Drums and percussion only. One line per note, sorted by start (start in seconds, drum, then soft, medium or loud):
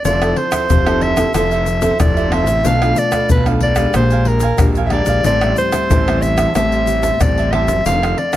0.05 pandeiro medium
0.05 shaker medium
0.05 surdo medium
0.22 pandeiro soft
0.22 tamborim medium
0.22 shaker soft
0.36 pandeiro medium
0.52 pandeiro medium
0.52 tamborim medium
0.52 shaker medium
0.52 surdo soft
0.70 pandeiro medium
0.70 shaker medium
0.70 surdo loud
0.86 pandeiro soft
0.86 tamborim medium
0.86 shaker soft
1.01 pandeiro soft
1.17 pandeiro medium
1.17 tamborim medium
1.17 shaker medium
1.17 surdo soft
1.34 pandeiro medium
1.34 tamborim medium
1.34 shaker medium
1.34 surdo medium
1.51 pandeiro soft
1.51 shaker soft
1.66 pandeiro medium
1.66 shaker medium
1.82 pandeiro medium
1.82 shaker medium
1.82 surdo soft
2.00 pandeiro medium
2.00 tamborim medium
2.00 shaker medium
2.00 surdo loud
2.17 pandeiro soft
2.17 shaker soft
2.32 pandeiro soft
2.32 tamborim medium
2.47 pandeiro medium
2.47 shaker medium
2.47 surdo soft
2.65 pandeiro medium
2.65 shaker medium
2.65 surdo medium
2.82 pandeiro soft
2.82 tamborim medium
2.82 shaker soft
2.96 pandeiro medium
2.96 shaker medium
3.12 pandeiro medium
3.12 tamborim medium
3.12 shaker medium
3.12 surdo soft
3.29 pandeiro medium
3.29 shaker medium
3.29 surdo loud
3.46 pandeiro soft
3.46 tamborim medium
3.46 shaker soft
3.60 pandeiro medium
3.76 pandeiro medium
3.76 tamborim medium
3.76 shaker medium
3.76 surdo soft
3.94 pandeiro medium
3.94 tamborim medium
3.94 shaker medium
3.94 surdo medium
4.10 pandeiro soft
4.10 shaker soft
4.25 pandeiro medium
4.40 pandeiro medium
4.40 shaker medium
4.40 surdo soft
4.58 pandeiro medium
4.58 tamborim medium
4.58 shaker medium
4.58 surdo loud
4.75 pandeiro soft
4.75 shaker soft
4.90 pandeiro medium
4.90 tamborim medium
5.06 pandeiro medium
5.06 shaker medium
5.06 surdo soft
5.24 pandeiro medium
5.24 shaker medium
5.24 surdo medium
5.41 pandeiro soft
5.41 tamborim medium
5.41 shaker soft
5.57 pandeiro soft
5.57 shaker medium
5.57 surdo soft
5.72 pandeiro medium
5.72 tamborim medium
5.72 shaker medium
5.72 surdo soft
5.91 pandeiro medium
5.91 shaker medium
5.91 surdo loud
6.08 pandeiro soft
6.08 tamborim medium
6.08 shaker soft
6.22 pandeiro medium
6.22 shaker medium
6.38 pandeiro medium
6.38 tamborim medium
6.38 shaker medium
6.38 surdo soft
6.55 pandeiro medium
6.55 tamborim medium
6.55 shaker medium
6.55 surdo medium
6.72 pandeiro soft
6.72 shaker soft
6.87 pandeiro medium
6.87 shaker medium
7.03 pandeiro medium
7.03 shaker medium
7.03 surdo soft
7.21 pandeiro medium
7.21 tamborim medium
7.21 shaker medium
7.21 surdo loud
7.38 pandeiro soft
7.38 shaker soft
7.53 pandeiro medium
7.53 tamborim medium
7.68 pandeiro medium
7.68 shaker medium
7.68 surdo soft
7.86 pandeiro medium
7.86 shaker medium
7.86 surdo medium
8.03 pandeiro soft
8.03 tamborim medium
8.03 shaker soft
8.18 pandeiro medium
8.33 pandeiro medium
8.33 tamborim medium
8.33 shaker medium
8.33 surdo soft